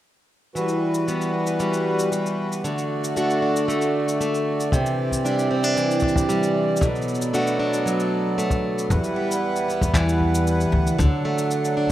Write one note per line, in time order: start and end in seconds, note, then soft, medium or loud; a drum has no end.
0.55 2.64 E3 medium
0.55 2.62 E3 medium
0.55 2.62 G3 medium
0.55 4.69 F#4 medium
0.55 2.62 B4 medium
0.55 cabasa medium
0.68 cabasa soft
0.94 cabasa medium
1.08 1.59 G3 soft
1.08 1.32 B3 medium
1.08 3.17 F#4 medium
1.08 cabasa medium
1.21 cabasa soft
1.33 2.69 B3 medium
1.47 cabasa medium
1.60 2.10 G3 medium
1.60 cabasa medium
1.73 cabasa soft
1.99 cabasa medium
2.12 2.69 G3 medium
2.12 cabasa medium
2.26 cabasa soft
2.52 cabasa medium
2.64 4.71 D3 medium
2.64 4.76 D3 medium
2.64 4.71 A3 medium
2.64 8.86 D5 medium
2.64 cabasa medium
2.78 cabasa soft
3.04 cabasa medium
3.16 3.67 A3 medium
3.16 3.42 D4 medium
3.16 4.78 F#4 medium
3.16 cabasa medium
3.30 cabasa soft
3.42 5.25 D4 medium
3.56 cabasa medium
3.68 4.19 A3 medium
3.68 cabasa medium
3.81 cabasa soft
4.08 cabasa medium
4.21 4.78 A3 medium
4.21 cabasa medium
4.34 cabasa soft
4.60 cabasa medium
4.72 6.81 C3 medium
4.72 6.79 E3 medium
4.72 6.79 C4 medium
4.72 6.79 G4 medium
4.72 kick loud
4.72 cabasa medium
4.86 cabasa soft
5.12 kick medium
5.12 cabasa medium
5.25 6.28 G3 soft
5.25 5.50 D4 medium
5.25 6.87 E4 medium
5.25 cabasa medium
5.39 cabasa medium
5.51 5.64 C4 medium
5.64 6.86 D4 soft
5.64 cabasa medium
5.77 6.86 E3 medium
5.77 cabasa medium
5.91 cabasa soft
6.00 kick medium
6.00 cabasa soft
6.08 cabasa soft
6.16 kick loud
6.16 cabasa medium
6.29 6.86 G3 medium
6.29 cabasa medium
6.43 cabasa soft
6.76 cabasa medium
6.81 8.90 B2 medium
6.81 8.88 F#3 medium
6.81 8.88 B3 medium
6.81 8.88 A4 medium
6.81 kick loud
6.81 cabasa medium
6.95 cabasa soft
7.02 cabasa soft
7.08 cabasa soft
7.15 cabasa soft
7.22 cabasa medium
7.34 8.37 A3 medium
7.34 7.58 D4 medium
7.34 9.19 F#4 medium
7.34 cabasa medium
7.47 cabasa soft
7.59 8.95 D4 medium
7.73 cabasa medium
7.86 9.19 F#3 medium
7.86 cabasa medium
8.00 cabasa soft
8.38 8.95 A3 medium
8.38 cabasa medium
8.50 kick medium
8.50 cabasa soft
8.78 cabasa medium
8.90 10.99 E2 medium
8.90 8.98 E2 medium
8.90 10.97 G3 medium
8.90 10.97 E4 medium
8.90 10.97 B4 medium
8.90 11.92 F#5 medium
8.90 kick medium
8.90 cabasa medium
9.04 cabasa soft
9.16 11.04 G3 medium
9.31 cabasa medium
9.56 cabasa medium
9.68 11.04 B3 medium
9.68 cabasa soft
9.81 10.65 E2 medium
9.81 kick medium
9.81 cabasa medium
9.94 10.98 E3 medium
9.94 kick loud
9.94 clap medium
9.94 cabasa medium
10.09 cabasa soft
10.21 kick soft
10.35 cabasa medium
10.47 cabasa medium
10.61 cabasa soft
10.72 10.88 D2 medium
10.87 cabasa medium
10.99 11.07 D2 medium
10.99 11.92 D3 medium
10.99 11.92 F#3 medium
10.99 11.92 D4 medium
10.99 11.92 A4 medium
10.99 kick medium
10.99 cabasa medium
11.25 11.92 A3 medium
11.38 cabasa medium
11.51 cabasa medium
11.65 cabasa medium
11.77 11.92 D4 medium